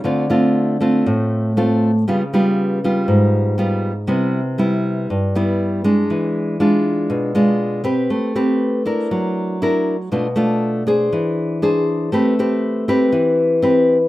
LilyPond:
\new Staff \with { instrumentName = "Nylon-string guitar" } { \time 4/4 \key a \minor \tempo 4 = 119 << { <a c' f'>8 <a c' f'>4 <a c' f'>4. <a c' f'>8 r8 | <g b eis'>8 <g b eis'>4 <g b eis'>4. <g b eis'>8 r8 | <g b e'>8 r8 <g b e'>4 r8 <g b e'>4 <gis d'>8~ | <gis d'>4 <gis d' f'>4. <gis d' f'>4 <c' g' b'>8~ |
<c' g' b'>8 <c' g' b'>4 <d' e' bes'>4. <d' e' ais'>8 r8 | <a d' f'>8 <a d' f'>4 <d' gis' c''>4. <d' gis' c''>4 | <c' g' b'>8 <c' g' b'>4 <c' g' b'>4. <c' g' b'>8 r8 | } \\ { d2 a,2 | cis2 gis,2 | c2 g,2 | e2 b,2 |
a2 fis2 | b,2 e2 | a2 e2 | } >> }